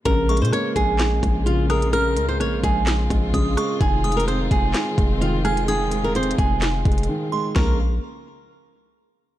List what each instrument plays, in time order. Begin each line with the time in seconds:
0.05 808-style bass A#1, string section C#3 G#3 A#3 F4, grand piano C#3, nylon-string guitar A#4, kick, closed hi-hat
0.29 grand piano G#3, synth bell C#6, closed hi-hat
0.37 closed hi-hat
0.42 808-style bass A#2, nylon-string guitar C5, closed hi-hat
0.53 grand piano A#3, nylon-string guitar C#5, cross-stick, closed hi-hat
0.76 808-style bass A#1, grand piano G#3, nylon-string guitar G#4, kick, closed hi-hat
0.99 snare, clap, closed hi-hat
1.23 808-style bass A#1, grand piano G#3, kick, closed hi-hat
1.46 grand piano C#3, nylon-string guitar F4, closed hi-hat
1.70 grand piano G#3, nylon-string guitar A#4, synth bell D#6, cross-stick, closed hi-hat
1.82 closed hi-hat
1.93 grand piano C#3, string section C4, nylon-string guitar A#4, synth bell F6, closed hi-hat
2.16 808-style bass C#2, grand piano G#3, closed hi-hat
2.28 nylon-string guitar C5
2.40 808-style bass A#1, grand piano A#3, nylon-string guitar C#5, cross-stick, closed hi-hat
2.63 808-style bass A#1, grand piano G#3, nylon-string guitar G#4, kick, closed hi-hat
2.86 snare, clap, closed hi-hat
3.10 808-style bass A#1, grand piano G#3, kick, closed hi-hat
3.34 808-style bass A#1, grand piano C#3, synth bell D#6, kick, closed hi-hat
3.57 grand piano G#3, synth bell C#6, cross-stick, closed hi-hat
3.81 808-style bass F1, grand piano D#3, string section D#3 G#3, nylon-string guitar G#4, kick, closed hi-hat
4.04 grand piano G#3, synth bell D#6, closed hi-hat
4.12 closed hi-hat
4.17 nylon-string guitar A#4, closed hi-hat
4.28 grand piano C4, nylon-string guitar C5, cross-stick, closed hi-hat
4.51 808-style bass F1, grand piano G#3, nylon-string guitar G#4, kick, closed hi-hat
4.74 snare, clap, closed hi-hat
4.98 808-style bass F1, grand piano G#3, kick, closed hi-hat
5.21 grand piano D#3, nylon-string guitar F4, closed hi-hat
5.45 grand piano G#3, nylon-string guitar G#4, synth bell F6, cross-stick, closed hi-hat
5.57 closed hi-hat
5.68 grand piano D#3, nylon-string guitar G#4, synth bell D#6, closed hi-hat
5.91 grand piano G#3, closed hi-hat
6.04 nylon-string guitar A#4
6.15 grand piano C4, nylon-string guitar C5, closed hi-hat
6.23 closed hi-hat
6.31 closed hi-hat
6.38 808-style bass F1, grand piano G#3, nylon-string guitar G#4, kick, closed hi-hat
6.61 snare, clap, closed hi-hat
6.85 808-style bass F1, grand piano G#3, kick, closed hi-hat
6.92 closed hi-hat
6.98 closed hi-hat
7.03 closed hi-hat
7.09 grand piano D#3
7.32 grand piano G#3, synth bell C6
7.56 808-style bass A#1, string section C#3 G#3 A#3 F4, grand piano C#3 F3 G#3 A#3, nylon-string guitar A#4, synth bell C#6, snare, floor tom